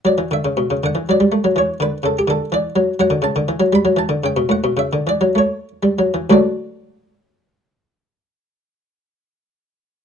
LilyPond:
<<
  \new Staff \with { instrumentName = "Harpsichord" } { \time 6/8 \key d \major \tempo 4. = 73 d''8 e''4 fis''8 d''4 | cis''8 b'8 a'16 g'16 a'8 d''4 | fis''8 a''4 b''8 a''8 g''8 | fis''8 e''8 d''8 cis''4. |
<d, a, fis a d' fis' d''>2.~ | <d, a, fis a d' fis' d''>2. | }
  \new Staff \with { instrumentName = "Harpsichord" } { \clef bass \time 6/8 \key d \major fis16 e16 d16 cis16 b,16 cis16 d16 e16 fis16 g16 a16 fis16 | e8 d8 cis8 d8 e8 fis8 | fis16 d16 cis16 d16 e16 fis16 g16 fis16 e16 d16 cis16 b,16 | a,16 b,16 cis16 d16 e16 fis16 a8. g16 fis16 e16 |
r2. | r2. | }
>>